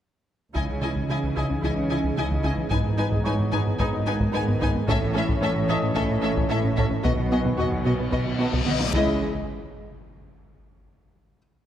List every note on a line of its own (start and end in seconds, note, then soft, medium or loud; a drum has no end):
0.54 0.64 C#2 medium
0.54 1.03 C#2 soft
0.54 0.64 C#3 medium
0.54 1.03 C#3 soft
0.54 3.75 E3 soft
0.54 2.68 E3 medium
0.54 2.67 C#4 medium
0.54 2.67 D#4 soft
0.54 0.62 E4 soft
0.54 4.83 G#4 medium
0.54 4.83 D#5 medium
0.54 0.63 D#5 soft
0.54 0.63 G#5 soft
0.54 taiko soft
0.69 0.77 C#2 soft
0.82 0.90 C#3 medium
0.82 0.91 G#3 soft
0.82 0.91 E4 soft
0.82 0.90 D#5 soft
0.82 0.90 G#5 soft
0.96 1.04 C#2 medium
0.96 1.04 C#3 medium
1.09 1.57 C#2 soft
1.09 1.18 C#3 medium
1.09 1.58 C#3 soft
1.09 1.18 G#3 medium
1.09 1.17 E4 soft
1.09 1.18 D#5 soft
1.09 1.18 G#5 soft
1.24 1.32 C#2 medium
1.36 1.45 C#2 medium
1.36 1.45 C#3 medium
1.36 1.44 E4 soft
1.36 1.45 D#5 soft
1.36 1.45 G#5 soft
1.36 2.95 D#6 soft
1.50 1.59 C#2 soft
1.50 1.58 C#4 medium
1.62 2.11 C#2 soft
1.62 1.72 C#2 medium
1.62 1.72 C#3 medium
1.62 2.12 C#3 medium
1.62 1.70 E4 soft
1.62 1.72 D#5 soft
1.62 1.72 G#5 soft
1.77 1.85 C#2 medium
1.90 1.99 C#3 medium
1.90 1.99 G#3 soft
1.90 1.99 E4 soft
1.90 1.99 D#5 soft
1.90 1.98 G#5 soft
2.04 2.12 C#2 medium
2.04 2.12 C#3 medium
2.17 2.65 C#2 medium
2.17 2.26 C#3 medium
2.17 2.66 C#3 soft
2.17 2.26 G#3 medium
2.17 2.25 E4 soft
2.17 2.26 D#5 soft
2.17 2.25 G#5 soft
2.31 2.39 C#2 medium
2.31 2.39 E3 soft
2.43 2.53 C#2 medium
2.43 2.53 C#3 medium
2.43 2.52 E4 soft
2.43 2.54 D#5 soft
2.43 2.51 G#5 soft
2.58 2.66 C#2 medium
2.58 2.66 E3 medium
2.70 3.19 G#1 medium
2.70 2.79 G#2 medium
2.70 3.20 G#2 medium
2.70 2.80 G#3 medium
2.70 4.88 B3 medium
2.70 4.84 B3 soft
2.70 2.79 D#4 soft
2.70 4.88 D#4 medium
2.70 2.80 B4 soft
2.70 2.78 G#5 medium
2.70 taiko medium
2.84 2.93 G#2 medium
2.98 3.07 G#3 medium
2.98 3.06 D#4 soft
2.98 3.07 D#4 medium
2.98 3.07 B4 soft
2.98 3.06 G#5 soft
3.11 3.20 G#2 medium
3.11 3.21 G#3 medium
3.11 taiko medium
3.24 3.73 G#1 medium
3.24 3.74 G#2 medium
3.24 3.34 G#3 medium
3.24 3.34 D#4 medium
3.24 3.34 D#4 soft
3.24 3.34 B4 soft
3.24 4.83 C#5 soft
3.24 3.33 G#5 soft
3.24 4.83 C#6 soft
3.39 3.47 G#2 medium
3.52 3.61 G#2 medium
3.52 3.61 G#3 medium
3.52 3.61 D#4 soft
3.52 3.60 B4 soft
3.52 3.60 G#5 soft
3.67 3.75 G#2 medium
3.67 3.75 G#4 medium
3.79 4.27 G#1 medium
3.79 3.88 G#2 medium
3.79 4.28 G#2 medium
3.79 4.88 D#3 medium
3.79 3.88 G#3 medium
3.79 3.88 D#4 medium
3.79 3.87 B4 medium
3.79 3.87 G#5 soft
3.79 5.38 D#6 soft
3.79 taiko medium
3.93 4.01 G#2 medium
4.06 4.15 G#3 medium
4.06 4.15 D#4 medium
4.06 4.15 D#4 soft
4.06 4.14 B4 soft
4.06 4.14 G#5 medium
4.20 4.29 G#2 medium
4.20 4.28 G#3 medium
4.20 taiko medium
4.33 4.81 G#1 medium
4.33 4.82 G#2 medium
4.33 4.42 G#3 medium
4.33 4.41 D#4 soft
4.33 4.43 D#4 medium
4.33 4.41 B4 medium
4.33 4.42 G#5 medium
4.48 4.56 G#2 medium
4.48 4.56 B3 medium
4.60 4.70 G#2 medium
4.60 4.69 G#3 medium
4.60 4.68 D#4 medium
4.60 4.68 B4 medium
4.60 4.70 G#5 medium
4.60 taiko medium
4.75 4.83 G#2 medium
4.75 4.83 B3 medium
4.88 5.36 A1 medium
4.88 5.36 A2 medium
4.88 4.96 A2 medium
4.88 7.01 E3 medium
4.88 7.05 E3 medium
4.88 4.97 A3 medium
4.88 7.05 A3 medium
4.88 4.96 C#4 medium
4.88 7.00 C#4 medium
4.88 4.96 A4 medium
4.88 7.05 A4 medium
4.88 7.05 C#5 medium
4.88 4.97 E5 medium
4.88 taiko medium
5.01 5.10 A2 medium
5.14 5.24 A3 medium
5.14 5.22 C#4 medium
5.14 5.24 E4 medium
5.14 5.22 A4 medium
5.14 5.25 E5 medium
5.28 5.37 A2 medium
5.28 5.37 A3 medium
5.28 taiko medium
5.41 5.90 A1 medium
5.41 5.90 A2 medium
5.41 5.50 A3 medium
5.41 5.49 C#4 medium
5.41 5.51 E4 medium
5.41 5.50 A4 medium
5.41 5.51 E5 medium
5.56 5.64 A2 medium
5.68 5.77 A2 medium
5.68 5.78 A3 medium
5.68 5.76 C#4 medium
5.68 5.77 A4 medium
5.68 7.28 D#5 soft
5.68 5.77 E5 medium
5.68 7.28 D#6 medium
5.83 5.91 A2 medium
5.83 5.91 A4 medium
5.95 6.44 A1 medium
5.95 6.04 A2 medium
5.95 6.44 A2 medium
5.95 6.04 A3 medium
5.95 6.04 C#4 medium
5.95 6.03 A4 medium
5.95 6.03 E5 medium
5.95 taiko medium
6.10 6.18 A2 medium
6.22 6.31 A3 medium
6.22 6.31 C#4 medium
6.22 6.31 E4 medium
6.22 6.30 A4 medium
6.22 6.31 E5 medium
6.37 6.45 A2 medium
6.37 6.45 A3 medium
6.37 taiko medium
6.50 6.98 A1 medium
6.50 6.98 A2 medium
6.50 6.59 A3 medium
6.50 6.58 C#4 soft
6.50 6.59 E4 medium
6.50 6.58 A4 medium
6.50 6.58 E5 medium
6.64 6.72 A2 medium
6.64 6.72 C#4 medium
6.77 6.86 A2 medium
6.77 6.86 A3 medium
6.77 6.86 C#4 soft
6.77 6.85 A4 soft
6.77 6.85 E5 soft
6.77 taiko medium
6.91 7.00 A2 medium
6.91 6.99 C#4 medium
7.03 7.51 B1 medium
7.03 7.52 B2 medium
7.03 7.13 B2 medium
7.03 8.93 D#3 medium
7.03 8.77 F#3 medium
7.03 8.93 B3 medium
7.03 7.12 B3 medium
7.03 7.12 B3 soft
7.03 8.77 D#4 medium
7.03 8.93 F#4 medium
7.03 7.12 F#4 soft
7.03 8.93 B4 medium
7.03 7.12 D#5 medium
7.03 taiko medium
7.03 reverse cymbal medium
7.19 7.26 B2 medium
7.32 7.40 B3 soft
7.32 7.40 B3 medium
7.32 7.40 F#4 soft
7.32 7.40 F#4 medium
7.32 7.40 D#5 soft
7.32 8.90 G#5 soft
7.45 7.53 B2 medium
7.45 7.53 B3 medium
7.45 taiko medium
7.58 8.06 B1 medium
7.58 8.06 B2 medium
7.58 7.66 B3 soft
7.58 7.66 B3 medium
7.58 7.66 F#4 soft
7.58 7.67 F#4 medium
7.58 7.68 D#5 soft
7.58 taiko low medium
7.72 7.80 B2 medium
7.72 taiko low soft
7.85 7.94 B2 medium
7.85 7.93 B3 soft
7.85 7.94 B3 medium
7.85 7.93 F#4 soft
7.85 7.94 D#5 soft
7.99 8.08 B2 medium
7.99 8.07 B4 medium
8.11 8.60 B1 medium
8.11 8.60 B2 medium
8.11 8.21 B2 medium
8.11 8.19 B3 soft
8.11 8.21 B3 medium
8.11 8.20 F#4 soft
8.11 8.21 D#5 soft
8.11 taiko medium
8.27 8.34 B2 medium
8.39 8.47 B3 medium
8.39 8.48 B3 soft
8.39 8.48 F#4 medium
8.39 8.48 F#4 soft
8.39 8.48 D#5 soft
8.39 9.17 A5 soft
8.52 8.62 B2 medium
8.52 8.61 B3 medium
8.52 taiko medium
8.65 8.93 B1 medium
8.65 8.93 B2 soft
8.65 8.74 B3 medium
8.65 8.75 B3 soft
8.65 8.74 F#4 medium
8.65 8.75 F#4 soft
8.65 8.77 D#5 soft
8.65 taiko mid medium
8.79 8.88 B2 medium
8.79 8.88 D#4 medium
8.79 taiko high medium
8.93 9.24 C#2 medium
8.93 9.24 C#3 medium
8.93 9.24 E3 medium
8.93 9.16 E3 medium
8.93 9.24 G#3 medium
8.93 9.23 E4 medium
8.93 9.24 G#4 medium
8.93 9.16 D#5 medium
8.93 9.24 D#5 medium
8.93 taiko medium
8.93 impact medium